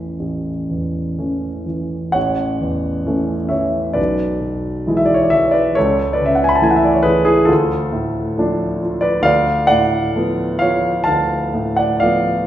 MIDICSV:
0, 0, Header, 1, 2, 480
1, 0, Start_track
1, 0, Key_signature, 3, "major"
1, 0, Tempo, 986842
1, 1049, Tempo, 921659
1, 1050, Time_signature, 4, 2, 24, 8
1, 1529, Tempo, 886263
1, 5369, Tempo, 911854
1, 5849, Tempo, 956938
1, 6545, End_track
2, 0, Start_track
2, 0, Title_t, "Grand piano"
2, 0, Program_c, 0, 0
2, 0, Control_c, 0, 64, 127
2, 0, Note_on_c, 0, 33, 38
2, 0, Note_on_c, 0, 40, 28
2, 0, Note_on_c, 0, 52, 28
2, 0, Note_on_c, 0, 57, 28
2, 0, Note_on_c, 0, 61, 31
2, 0, Note_on_c, 0, 69, 37
2, 0, Note_on_c, 0, 71, 59
2, 69, Note_off_c, 0, 33, 0
2, 95, Note_on_c, 0, 33, 30
2, 234, Note_off_c, 0, 52, 0
2, 338, Note_off_c, 0, 40, 0
2, 338, Note_on_c, 0, 40, 26
2, 577, Note_off_c, 0, 57, 0
2, 577, Note_off_c, 0, 61, 0
2, 577, Note_on_c, 0, 57, 28
2, 577, Note_on_c, 0, 61, 32
2, 579, Note_on_c, 0, 52, 26
2, 719, Note_off_c, 0, 40, 0
2, 797, Note_off_c, 0, 57, 0
2, 797, Note_off_c, 0, 61, 0
2, 798, Note_off_c, 0, 52, 0
2, 807, Note_off_c, 0, 69, 0
2, 807, Note_on_c, 0, 52, 31
2, 1033, Note_off_c, 0, 33, 0
2, 1033, Note_on_c, 0, 78, 80
2, 1036, Note_on_c, 0, 73, 63
2, 1047, Note_off_c, 0, 52, 0
2, 1047, Note_on_c, 0, 33, 50
2, 1059, Control_c, 0, 64, 0
2, 1061, Note_off_c, 0, 71, 0
2, 1136, Control_c, 0, 64, 127
2, 1282, Note_on_c, 0, 40, 38
2, 1519, Note_on_c, 0, 52, 37
2, 1523, Note_on_c, 0, 61, 43
2, 1525, Note_on_c, 0, 57, 39
2, 1671, Note_off_c, 0, 40, 0
2, 1744, Note_off_c, 0, 73, 0
2, 1746, Note_off_c, 0, 52, 0
2, 1749, Note_off_c, 0, 61, 0
2, 1750, Note_off_c, 0, 57, 0
2, 1750, Note_on_c, 0, 76, 57
2, 1755, Note_on_c, 0, 73, 49
2, 1764, Note_off_c, 0, 78, 0
2, 1767, Note_on_c, 0, 52, 41
2, 1989, Note_off_c, 0, 73, 0
2, 1993, Note_off_c, 0, 33, 0
2, 1993, Note_on_c, 0, 74, 67
2, 1998, Note_on_c, 0, 71, 53
2, 2004, Note_off_c, 0, 76, 0
2, 2006, Note_on_c, 0, 35, 49
2, 2013, Note_off_c, 0, 52, 0
2, 2027, Control_c, 0, 64, 0
2, 2113, Control_c, 0, 64, 127
2, 2249, Note_on_c, 0, 47, 35
2, 2499, Note_on_c, 0, 52, 43
2, 2503, Note_on_c, 0, 56, 45
2, 2506, Note_on_c, 0, 64, 46
2, 2523, Note_off_c, 0, 71, 0
2, 2542, Note_off_c, 0, 74, 0
2, 2553, Note_on_c, 0, 76, 68
2, 2600, Note_on_c, 0, 74, 69
2, 2601, Note_off_c, 0, 76, 0
2, 2643, Note_off_c, 0, 47, 0
2, 2647, Note_on_c, 0, 73, 71
2, 2649, Note_off_c, 0, 74, 0
2, 2693, Note_on_c, 0, 74, 63
2, 2696, Note_off_c, 0, 73, 0
2, 2721, Note_off_c, 0, 52, 0
2, 2723, Note_off_c, 0, 56, 0
2, 2724, Note_off_c, 0, 64, 0
2, 2733, Note_on_c, 0, 76, 81
2, 2739, Note_on_c, 0, 73, 62
2, 2742, Note_off_c, 0, 74, 0
2, 2746, Note_on_c, 0, 52, 45
2, 2848, Note_on_c, 0, 74, 75
2, 2852, Note_off_c, 0, 73, 0
2, 2858, Note_off_c, 0, 76, 0
2, 2859, Note_on_c, 0, 71, 57
2, 2955, Note_off_c, 0, 35, 0
2, 2971, Note_off_c, 0, 71, 0
2, 2974, Note_off_c, 0, 74, 0
2, 2977, Note_on_c, 0, 73, 89
2, 2983, Note_off_c, 0, 52, 0
2, 2984, Note_on_c, 0, 69, 62
2, 2991, Control_c, 0, 64, 0
2, 2993, Note_on_c, 0, 37, 64
2, 3092, Control_c, 0, 64, 127
2, 3181, Note_off_c, 0, 69, 0
2, 3183, Note_on_c, 0, 74, 69
2, 3189, Note_on_c, 0, 71, 59
2, 3193, Note_off_c, 0, 73, 0
2, 3225, Note_on_c, 0, 49, 50
2, 3251, Note_on_c, 0, 76, 68
2, 3256, Note_off_c, 0, 71, 0
2, 3258, Note_off_c, 0, 74, 0
2, 3302, Note_on_c, 0, 78, 65
2, 3312, Note_off_c, 0, 76, 0
2, 3350, Note_on_c, 0, 80, 74
2, 3357, Note_off_c, 0, 78, 0
2, 3375, Note_on_c, 0, 83, 79
2, 3397, Note_off_c, 0, 80, 0
2, 3412, Note_on_c, 0, 81, 74
2, 3425, Note_off_c, 0, 83, 0
2, 3444, Note_on_c, 0, 52, 47
2, 3447, Note_on_c, 0, 64, 53
2, 3448, Note_on_c, 0, 57, 51
2, 3455, Note_on_c, 0, 80, 73
2, 3460, Note_off_c, 0, 81, 0
2, 3494, Note_on_c, 0, 78, 63
2, 3500, Note_off_c, 0, 80, 0
2, 3523, Note_on_c, 0, 76, 68
2, 3541, Note_off_c, 0, 78, 0
2, 3569, Note_on_c, 0, 74, 63
2, 3580, Note_off_c, 0, 76, 0
2, 3598, Note_off_c, 0, 49, 0
2, 3618, Note_on_c, 0, 73, 66
2, 3628, Note_off_c, 0, 74, 0
2, 3663, Note_off_c, 0, 52, 0
2, 3664, Note_off_c, 0, 64, 0
2, 3665, Note_off_c, 0, 57, 0
2, 3667, Note_on_c, 0, 71, 85
2, 3672, Note_on_c, 0, 68, 59
2, 3679, Note_off_c, 0, 73, 0
2, 3684, Note_on_c, 0, 52, 48
2, 3779, Note_off_c, 0, 68, 0
2, 3788, Note_on_c, 0, 68, 84
2, 3794, Note_on_c, 0, 64, 62
2, 3797, Note_off_c, 0, 71, 0
2, 3898, Note_on_c, 0, 69, 84
2, 3903, Note_on_c, 0, 65, 62
2, 3911, Note_off_c, 0, 37, 0
2, 3911, Note_off_c, 0, 64, 0
2, 3915, Note_on_c, 0, 38, 60
2, 3917, Note_off_c, 0, 68, 0
2, 3924, Note_off_c, 0, 52, 0
2, 3934, Control_c, 0, 64, 0
2, 4028, Control_c, 0, 64, 127
2, 4152, Note_on_c, 0, 45, 50
2, 4399, Note_on_c, 0, 57, 47
2, 4400, Note_on_c, 0, 53, 55
2, 4406, Note_on_c, 0, 62, 56
2, 4549, Note_off_c, 0, 45, 0
2, 4627, Note_off_c, 0, 53, 0
2, 4627, Note_off_c, 0, 57, 0
2, 4631, Note_off_c, 0, 62, 0
2, 4640, Note_on_c, 0, 53, 54
2, 4741, Note_on_c, 0, 74, 81
2, 4742, Note_off_c, 0, 65, 0
2, 4748, Note_on_c, 0, 71, 63
2, 4761, Note_off_c, 0, 69, 0
2, 4848, Note_off_c, 0, 38, 0
2, 4856, Note_on_c, 0, 38, 64
2, 4859, Note_on_c, 0, 77, 97
2, 4863, Note_off_c, 0, 74, 0
2, 4871, Note_on_c, 0, 74, 77
2, 4872, Note_off_c, 0, 71, 0
2, 4888, Note_off_c, 0, 53, 0
2, 4904, Control_c, 0, 64, 0
2, 4976, Control_c, 0, 64, 127
2, 5095, Note_off_c, 0, 74, 0
2, 5100, Note_on_c, 0, 78, 101
2, 5103, Note_on_c, 0, 74, 71
2, 5114, Note_on_c, 0, 45, 51
2, 5115, Note_off_c, 0, 77, 0
2, 5362, Note_on_c, 0, 53, 46
2, 5363, Note_on_c, 0, 57, 45
2, 5369, Note_on_c, 0, 59, 52
2, 5505, Note_off_c, 0, 45, 0
2, 5574, Note_off_c, 0, 74, 0
2, 5584, Note_off_c, 0, 53, 0
2, 5585, Note_off_c, 0, 57, 0
2, 5587, Note_off_c, 0, 59, 0
2, 5590, Note_on_c, 0, 77, 85
2, 5594, Note_off_c, 0, 78, 0
2, 5600, Note_on_c, 0, 73, 65
2, 5605, Note_on_c, 0, 53, 52
2, 5812, Note_off_c, 0, 38, 0
2, 5823, Note_off_c, 0, 77, 0
2, 5826, Note_on_c, 0, 81, 87
2, 5830, Note_off_c, 0, 73, 0
2, 5831, Note_on_c, 0, 77, 71
2, 5844, Note_on_c, 0, 38, 53
2, 5990, Note_off_c, 0, 53, 0
2, 6080, Note_on_c, 0, 45, 45
2, 6175, Note_off_c, 0, 77, 0
2, 6192, Note_on_c, 0, 78, 82
2, 6193, Note_off_c, 0, 81, 0
2, 6203, Note_on_c, 0, 74, 59
2, 6303, Note_off_c, 0, 74, 0
2, 6310, Note_on_c, 0, 77, 83
2, 6311, Note_on_c, 0, 74, 61
2, 6320, Note_off_c, 0, 78, 0
2, 6320, Note_on_c, 0, 53, 46
2, 6324, Note_on_c, 0, 57, 44
2, 6324, Note_on_c, 0, 59, 47
2, 6470, Note_off_c, 0, 45, 0
2, 6545, Note_off_c, 0, 38, 0
2, 6545, Note_off_c, 0, 53, 0
2, 6545, Note_off_c, 0, 57, 0
2, 6545, Note_off_c, 0, 59, 0
2, 6545, Note_off_c, 0, 74, 0
2, 6545, Note_off_c, 0, 77, 0
2, 6545, End_track
0, 0, End_of_file